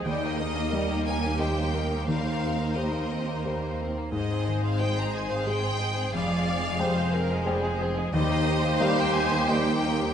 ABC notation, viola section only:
X:1
M:3/4
L:1/8
Q:1/4=89
K:Eb
V:1 name="Viola section"
g B3 c B | c4- c z | c6 | d2 c B A2 |
c6 |]